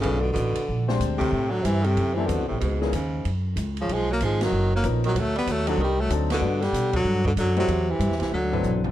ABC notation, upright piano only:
X:1
M:4/4
L:1/8
Q:"Swing" 1/4=189
K:G
V:1 name="Upright piano"
[A,B,D=FB] z4 [_A,CDGc]3 | z4 z [G,B,CEA]3 | z [E,B,^C^D^G] z6 | z6 [^E,B,^C^D^A]2 |
z3 [F,CD_EA] z2 [F,CDEA] z | [G,B,DFB] z6 [G,A,CEF] | z4 z [F,CDEB]3 |]